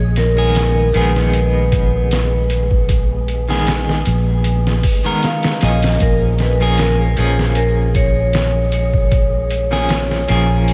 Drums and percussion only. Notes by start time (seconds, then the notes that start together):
0.16 snare, closed hi-hat
0.55 snare, closed hi-hat
0.94 closed hi-hat
1.16 snare
1.33 closed hi-hat
1.72 kick, closed hi-hat
2.11 snare, closed hi-hat
2.50 closed hi-hat
2.71 kick
2.89 kick, closed hi-hat
3.28 closed hi-hat
3.51 snare
3.67 snare, closed hi-hat
3.89 snare
4.05 closed hi-hat
4.44 closed hi-hat
4.67 snare
4.83 kick, open hi-hat
5.04 closed hi-hat
5.23 snare, closed hi-hat
5.43 snare, closed hi-hat
5.61 snare, closed hi-hat
5.83 snare, closed hi-hat
6.00 kick, closed hi-hat, tambourine
6.38 snare, closed hi-hat, tambourine
6.60 tambourine
6.78 snare, closed hi-hat, tambourine
7.17 closed hi-hat, tambourine
7.38 snare, tambourine
7.55 closed hi-hat, tambourine
7.94 kick, closed hi-hat, tambourine
8.15 tambourine
8.33 snare, closed hi-hat, tambourine
8.71 closed hi-hat, tambourine
8.92 kick, tambourine
9.11 kick, closed hi-hat, tambourine
9.50 closed hi-hat, tambourine
9.71 snare, tambourine
9.89 snare, closed hi-hat, tambourine
10.11 snare
10.28 closed hi-hat, tambourine
10.50 tambourine
10.68 closed hi-hat, tambourine